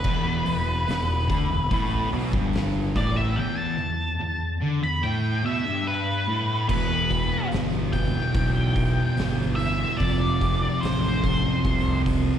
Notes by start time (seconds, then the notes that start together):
Already playing: B4
0.04 E1 E2, kick, crash
0.46 E1 E2, open hi-hat
0.88 E1 E2, snare, open hi-hat
1.28 D2 D3, kick, open hi-hat
1.50 E1 E2
1.71 A1 A2, kick, open hi-hat
2.12 B1 B2, open hi-hat
2.33 G1 G2, kick, snare
2.53 snare, open hi-hat
2.96 A1 A2 D5, kick, open hi-hat
3.17 E5
3.36 E2 G5
3.58 A5
3.79 E2
4.21 E2
4.62 D3
4.83 E2 B5
5.03 A2 G5
5.44 B2 E5
5.66 G2
5.87 B4
6.28 A2
6.68 E1 E2 B2 B4, kick, crash
6.72 E3
7.11 kick, open hi-hat
7.52 G1, snare, open hi-hat
7.92 B2 E3 G5, kick, open hi-hat
7.97 E2
8.34 B1 E2 B2 E3, kick, open hi-hat
8.76 kick, open hi-hat
9.17 G1 E2 B2 E3, snare, open hi-hat
9.55 B2 E3 E5, open hi-hat
9.60 E2
9.98 F1 F2 C3 D5, kick, open hi-hat
10.03 F3
10.41 kick, open hi-hat
10.80 A1 C5, open hi-hat
10.85 snare
11.22 F2 C3 F3, kick, open hi-hat
11.64 C2 F2 C3 F3, kick, open hi-hat
12.06 kick, open hi-hat